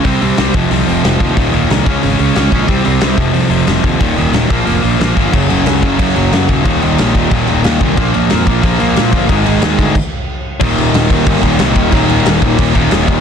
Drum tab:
CC |--------|--------|--------|--------|
HH |oooooooo|oooooooo|oooooooo|oooooooo|
SD |--o---o-|--o---o-|--o---o-|--o---o-|
BD |o--o---o|o--o---o|o--o---o|o--o---o|

CC |xxxxxxxx|xxxxxxxx|xxxxxxxx|xxxxx---|
HH |--------|--------|--------|--------|
SD |--o---o-|--o---o-|--o---o-|--o-----|
BD |o--oo--o|o--oo--o|o--oo--o|o--oo---|

CC |xxxxxxxx|xxxxxxxx|
HH |--------|--------|
SD |--o---o-|--o---o-|
BD |o--ooo-o|o--ooo-o|